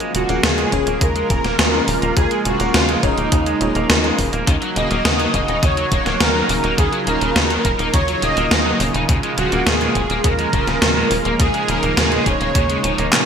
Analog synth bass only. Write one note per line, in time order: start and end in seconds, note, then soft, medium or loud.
0.15 0.26 D#1 medium
0.29 0.40 D#1 medium
0.43 0.66 D#2 loud
0.72 0.84 D#1 loud
0.87 0.98 D#1 loud
1.01 1.24 D#2 loud
1.30 1.41 D#1 medium
1.45 1.56 D#1 medium
1.59 1.81 D#2 medium
1.88 1.99 D#1 medium
2.02 2.13 D#1 medium
2.17 2.28 D#2 loud
2.45 2.57 D#1 medium
2.60 2.71 D#1 medium
2.74 2.97 D#2 loud
3.03 3.14 D#1 loud
3.18 3.29 D#1 medium
3.32 3.55 D#2 loud
3.61 3.72 D#1 loud
3.75 3.87 D#1 medium
3.90 4.12 D#2 medium
4.19 4.30 D#1 medium
4.33 4.44 D#1 medium
4.47 4.59 D#2 loud
4.76 4.88 D#1 medium
4.91 5.02 D#1 medium
5.05 5.28 D#2 loud
5.34 5.45 D#1 loud
5.48 5.60 D#1 medium
5.63 5.85 D#2 medium
5.92 6.03 D#1 medium
6.06 6.17 D#1 medium
6.21 6.43 D#2 medium
6.49 6.61 D#1 medium
6.64 6.75 D#1 medium
6.78 6.89 D#2 loud
7.07 7.18 D#1 medium
7.21 7.33 D#1 medium
7.36 7.58 D#2 loud
7.65 7.76 D#1 loud
7.79 7.90 D#1 medium
7.94 8.16 D#2 loud
8.22 8.34 D#1 medium
8.37 8.48 D#1 medium
8.51 8.74 D#2 medium
8.80 8.91 D#1 medium
8.94 9.06 D#1 medium
9.09 9.20 D#2 loud
9.38 9.49 D#1 medium
9.52 9.63 D#1 medium
9.67 9.89 D#2 loud
9.95 10.07 D#1 loud
10.10 10.21 D#1 medium
10.24 10.47 D#2 loud
10.53 10.64 D#1 medium
10.67 10.79 D#1 medium
10.82 11.04 D#2 medium
11.11 11.22 D#1 medium
11.25 11.36 D#1 medium
11.40 11.51 D#2 loud
11.69 11.80 D#1 medium
11.83 11.94 D#1 medium
11.97 12.20 D#2 loud
12.26 12.38 D#1 loud
12.41 12.52 D#1 medium
12.55 12.78 D#2 loud
12.84 12.95 D#1 medium
12.98 13.10 D#1 medium